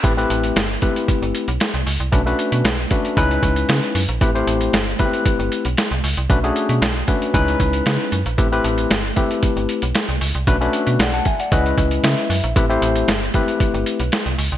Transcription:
0.03 A1 A3 C4 E4 G4 B4, kick, closed hi-hat
0.17 A3 C4 E4 G4 B4, closed hi-hat
0.30 A1, closed hi-hat
0.44 closed hi-hat
0.56 G1, snare, closed hi-hat
0.82 A3 C4 E4 G4 B4, kick, closed hi-hat
0.96 closed hi-hat
1.08 kick, closed hi-hat
1.22 G1, closed hi-hat
1.35 closed hi-hat
1.48 B1, closed hi-hat
1.60 snare, closed hi-hat
1.74 C2, closed hi-hat
1.86 C#2, open hi-hat
2.00 C2, closed hi-hat
2.12 B1 A3 C#4 D4 F#4 B4, kick, closed hi-hat
2.26 A3 C#4 D4 F#4 B4, closed hi-hat
2.39 closed hi-hat
2.52 B2, closed hi-hat
2.64 B1, snare, closed hi-hat
2.90 A3 C#4 D4 F#4 B4, kick, closed hi-hat
3.05 closed hi-hat
3.17 C#2 G#3 C#4 D#4 E4 B4, kick, closed hi-hat
3.31 closed hi-hat
3.43 C#2, kick, closed hi-hat
3.56 closed hi-hat
3.69 C#3, snare, closed hi-hat
3.83 closed hi-hat
3.95 F#2, open hi-hat
4.09 A#1, closed hi-hat
4.21 A1 A3 C4 E4 G4 B4, kick, closed hi-hat
4.35 A3 C4 E4 G4 C5, closed hi-hat
4.47 A1, closed hi-hat
4.61 closed hi-hat
4.73 G1, snare, closed hi-hat
4.99 A3 B3 E4 G4 B4, kick, closed hi-hat
5.05 C4
5.13 closed hi-hat
5.26 kick, closed hi-hat
5.39 G1, closed hi-hat
5.52 closed hi-hat
5.65 B1, closed hi-hat
5.77 snare, closed hi-hat
5.91 C2, closed hi-hat
6.04 C#2, open hi-hat
6.17 C2, closed hi-hat
6.29 B1 A3 C#4 D4 F#4 B4, kick, closed hi-hat
6.43 A3 C#4 D4 F#4 G#4, closed hi-hat
6.56 closed hi-hat
6.69 B2, closed hi-hat
6.81 B1, snare, closed hi-hat
7.08 A3 C#4 D4 F#4 B4, kick, closed hi-hat
7.22 closed hi-hat
7.33 C#2 G#3 C#4 D#4 E4 B4, kick, closed hi-hat
7.48 closed hi-hat
7.60 C#2, kick, closed hi-hat
7.73 closed hi-hat
7.86 C#3, snare, closed hi-hat
8.12 F#2, closed hi-hat
8.26 A#1, closed hi-hat
8.38 A1 A3 C4 E4 G4 B4, kick, closed hi-hat
8.52 A3 C4 E4 G4 B4, closed hi-hat
8.64 A1, closed hi-hat
8.78 closed hi-hat
8.91 G1, snare, closed hi-hat
9.16 A3 C4 E4 G4 B4, kick, closed hi-hat
9.31 closed hi-hat
9.43 kick, closed hi-hat
9.56 G1, closed hi-hat
9.69 closed hi-hat
9.82 B1, closed hi-hat
9.95 snare, closed hi-hat
10.09 C2, closed hi-hat
10.21 C#2, open hi-hat
10.35 C2, closed hi-hat
10.47 B1 A3 C#4 D4 F#4 B4, kick, closed hi-hat
10.61 A3 C#4 D4 F#4 B4, closed hi-hat
10.73 closed hi-hat
10.87 B2, closed hi-hat
10.99 B1 D5 F#5, snare, closed hi-hat
11.13 F#5 A5
11.25 E5 G#5, kick, closed hi-hat
11.40 D5 F#5, closed hi-hat
11.51 C#2 G#3 C#4 E4 B4 D#5, kick, closed hi-hat
11.66 closed hi-hat
11.78 C#2, kick, closed hi-hat
11.91 closed hi-hat
12.04 C#3 E5, snare, closed hi-hat
12.18 closed hi-hat
12.30 F#2, open hi-hat
12.44 A#1, closed hi-hat
12.56 A1 A3 C4 E4 G4 B4, kick, closed hi-hat
12.69 A3 C4 E4 G4 C5, closed hi-hat
12.82 A1, closed hi-hat
12.96 closed hi-hat
13.08 G1, snare, closed hi-hat
13.34 A3 C4 E4 G4 B4, kick, closed hi-hat
13.48 closed hi-hat
13.60 kick, closed hi-hat
13.74 G1, closed hi-hat
13.86 closed hi-hat
14.00 B1, closed hi-hat
14.12 snare, closed hi-hat
14.26 C2, closed hi-hat
14.38 C#2, open hi-hat
14.52 C2, closed hi-hat

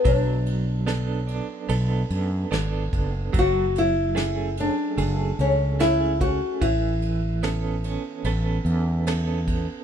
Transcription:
Already playing: B3 D4 A4
0.05 B1 F#3 D4, kick, ride
0.46 ride
0.86 B3 D4 A4, snare, ride
1.08 C#4
1.27 D4, ride
1.69 B1 B3 D4 A4, ride
2.10 F#2, ride
2.51 G#1 B3 D4 A4, snare, ride
2.93 F#1, kick, ride
3.33 F#1 F#3, kick, ride
3.39 F#4
3.76 E4, ride
4.15 A3 C#4 G#4, snare, ride
4.57 D4, ride
4.98 F#1 A3 G#4, ride
5.39 C#2 C#4, ride
5.80 A3 C#4 E4 G#4, snare, ride
6.21 F#4, kick, ride
6.61 A1 E3 E4, kick, ride
7.02 ride
7.43 B3 C#4 A4, snare, ride
7.84 C#4, ride
8.24 A1 B3 C#4 A4, ride
8.65 E2, ride
9.07 B3 C#4 A4, snare, ride
9.47 kick, ride

